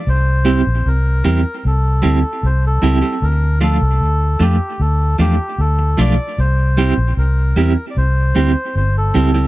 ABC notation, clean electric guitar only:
X:1
M:4/4
L:1/16
Q:1/4=76
K:Cmix
V:1 name="Clean electric guitar"
z2 [G,CEG] z3 [G,CEG] z3 [G,CEG] z3 [G,CEG] [G,CEG] | z2 [F,A,DF] z3 [F,A,DF] z3 [F,A,DF] z3 [F,A,DF] z | z2 [G,CEG] z3 [G,CEG] z3 [G,CEG] z3 [G,CEG] [G,CEG] |]